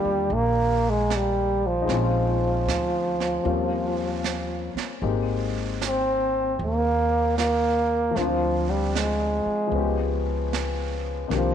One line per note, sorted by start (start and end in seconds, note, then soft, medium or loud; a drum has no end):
0.00 1.85 D#3 soft
0.00 0.35 G3 medium
0.00 1.87 A#3 soft
0.00 1.89 D4 soft
0.00 1.90 F4 soft
0.00 1.86 G4 soft
0.05 0.29 E2 soft
0.30 1.84 A#1 medium
0.30 0.91 A#3 medium
0.30 brush sweep soft
0.89 1.17 G#3 medium
1.10 snare soft
1.10 hi-hat pedal soft
1.15 1.68 G3 medium
1.66 4.78 F3 medium
1.82 3.44 G#3 soft
1.82 3.42 D#4 soft
1.87 2.62 A#1 medium
1.87 3.44 C4 soft
1.87 3.44 C#4 soft
1.87 brush sweep soft
1.87 snare soft
1.93 3.44 F4 soft
2.66 3.41 D2 medium
2.66 snare soft
2.66 hi-hat pedal soft
3.20 snare soft
3.44 4.71 D#2 medium
3.44 5.01 G3 soft
3.44 5.01 A#3 soft
3.44 5.01 C4 soft
3.44 5.02 C#4 soft
3.44 5.02 F4 soft
3.44 brush sweep soft
4.24 snare soft
4.24 hi-hat pedal soft
4.75 muted upright bass stroke soft
4.75 snare soft
5.02 6.55 G#1 medium
5.02 8.16 G#3 soft
5.02 8.16 A#3 soft
5.02 8.15 C4 soft
5.02 8.16 D#4 soft
5.02 8.16 G4 soft
5.02 brush sweep soft
5.82 snare soft
5.82 hi-hat pedal soft
5.86 6.58 C4 medium
6.59 8.12 D#2 medium
6.59 brush sweep soft
6.64 7.36 A#3 medium
7.38 8.18 A#3 medium
7.38 snare soft
7.38 hi-hat pedal soft
8.11 9.66 F3 soft
8.16 9.42 D2 medium
8.16 8.71 F3 medium
8.16 9.73 C4 soft
8.16 9.75 D4 soft
8.16 brush sweep soft
8.16 snare soft
8.21 9.76 F4 soft
8.70 8.99 G3 medium
8.95 10.27 G#3 medium
8.95 snare soft
8.95 hi-hat pedal soft
9.46 muted upright bass stroke soft
9.67 11.28 F3 soft
9.67 11.29 G#3 soft
9.72 11.26 C#2 medium
9.72 11.30 B3 soft
9.72 11.32 C#4 soft
9.72 brush sweep soft
9.78 11.31 G4 soft
10.53 snare soft
10.53 hi-hat pedal soft
11.28 11.54 C2 medium
11.28 11.54 D#3 soft
11.28 11.54 A#3 soft
11.28 11.54 C4 soft
11.28 brush sweep soft
11.28 snare soft
11.32 11.54 D4 soft
11.32 11.54 G4 soft
11.37 11.54 F3 medium